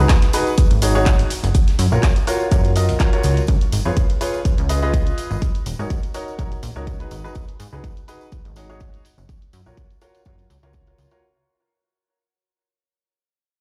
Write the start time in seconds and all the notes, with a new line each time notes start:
0.00 D#4 F#4 G#4 B4
0.09 kick, snare, clap, closed hi-hat, tambourine, shaker
0.22 snare, closed hi-hat, tambourine
0.33 D#4 F#4 G#4 B4, open hi-hat, tambourine, shaker
0.47 tambourine
0.58 kick, closed hi-hat, tambourine, shaker
0.71 G#1, closed hi-hat, tambourine
0.82 D#4 F#4 G#4 C#5, open hi-hat, tambourine, shaker
0.95 D#4 F#4 G#4 C#5, tambourine
1.06 kick, snare, clap, closed hi-hat, tambourine, shaker
1.19 closed hi-hat, tambourine
1.30 open hi-hat, tambourine, shaker
1.44 F#1, closed hi-hat, tambourine
1.55 kick, closed hi-hat, tambourine, shaker
1.68 snare, closed hi-hat, tambourine
1.79 F#2, snare, open hi-hat, tambourine, shaker
1.92 A#1 F4 F#4 A#4 C#5, tambourine
2.03 kick, snare, clap, closed hi-hat, tambourine, shaker
2.16 closed hi-hat, tambourine
2.27 F4 F#4 A#4 C#5, open hi-hat, tambourine, shaker
2.40 tambourine
2.52 F#2 F4 F#4 A#4 C#5, kick, closed hi-hat, tambourine, shaker
2.65 closed hi-hat, tambourine
2.76 F4 F#4 A#4 D#5, open hi-hat, tambourine, shaker
2.89 A#1, closed hi-hat, tambourine
2.99 F4 F#4 A#4 C#5, kick, snare, clap, closed hi-hat, tambourine, shaker
3.13 F4 F#4 A#4 C#5, closed hi-hat, tambourine
3.23 C#2, open hi-hat, tambourine, shaker
3.37 closed hi-hat, tambourine
3.47 C#2, kick, closed hi-hat, tambourine
3.61 closed hi-hat, tambourine
3.72 G#1, open hi-hat, tambourine
3.85 F2 F4 G#4 B4 C#5, tambourine
3.97 kick, closed hi-hat, tambourine
4.09 closed hi-hat, tambourine
4.21 F4 G#4 B4 C#5, open hi-hat, tambourine
4.34 tambourine
4.45 kick, closed hi-hat, tambourine
4.58 C#2, closed hi-hat, tambourine
4.69 F4 G#4 B4 D#5, open hi-hat, tambourine
4.82 F4 G#4 B4 D#5, tambourine
4.93 kick, closed hi-hat, tambourine
5.07 closed hi-hat, tambourine
5.18 open hi-hat, tambourine
5.31 G#1, tambourine
5.42 kick, closed hi-hat, tambourine
5.55 closed hi-hat, tambourine
5.66 D#1, open hi-hat, tambourine
5.79 G#2 D#4 F#4 A#4 C#5, tambourine
5.90 kick, closed hi-hat, tambourine
6.03 closed hi-hat, tambourine
6.14 D#4 F#4 A#4 C#5, open hi-hat, tambourine
6.28 tambourine
6.39 D#1 D#4 F#4 A#4 C#5, kick, closed hi-hat, tambourine
6.52 closed hi-hat, tambourine
6.63 A#1, open hi-hat, tambourine
6.76 C#2 D#4 F#4 A#4 C#5, tambourine
6.87 kick, closed hi-hat, tambourine
7.00 D#4 F#4 G#4 B4, closed hi-hat, tambourine
7.11 G#1, open hi-hat, tambourine
7.24 D#4 F#4 G#4 B4, tambourine
7.35 G#1, kick, closed hi-hat, tambourine
7.48 closed hi-hat, tambourine
7.60 G#2, open hi-hat, tambourine
7.73 C#2 D#4 F#4 G#4 B4, tambourine
7.84 kick, closed hi-hat, tambourine
7.97 closed hi-hat, tambourine
8.08 D#4 F#4 G#4 B4, open hi-hat, tambourine
8.21 tambourine
8.32 kick, closed hi-hat, tambourine
8.45 G#1, closed hi-hat, tambourine
8.56 D#4 F#4 G#4 C#5, open hi-hat, tambourine
8.69 D#4 F#4 G#4 C#5, tambourine
8.80 kick, closed hi-hat, tambourine
8.94 closed hi-hat, tambourine
9.05 open hi-hat, tambourine
9.18 F#1, tambourine
9.29 kick, closed hi-hat, tambourine
9.42 closed hi-hat
9.53 F#2, open hi-hat, tambourine
9.66 A#1 F4 F#4 A#4 C#5, tambourine
9.77 kick, closed hi-hat, tambourine
9.90 closed hi-hat, tambourine
10.01 F4 F#4 A#4 C#5, open hi-hat, tambourine
10.15 closed hi-hat, tambourine
10.25 F#2 F4 F#4 A#4 C#5, kick, closed hi-hat, tambourine
10.38 closed hi-hat, tambourine
10.50 C#2, open hi-hat, tambourine
10.63 C#2 F4 F#4 A#4 C#5, closed hi-hat, tambourine
10.73 kick, closed hi-hat, tambourine
10.87 F4 F#4 A#4 C#5, closed hi-hat
10.98 C#2, open hi-hat, tambourine
11.11 F4 F#4 A#4 C#5, closed hi-hat, tambourine